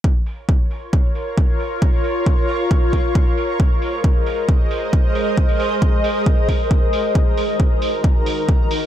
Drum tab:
HH |--o---o---o---o-|-oo---o---o---o-|--o---o---o---o-|-oo---o---o---o-|
BD |o---o---o---o---|o---o---o-o-o---|o---o---o---o---|o---o---o-o-o---|

HH |--o---o---o---o-|
BD |o---o---o---o---|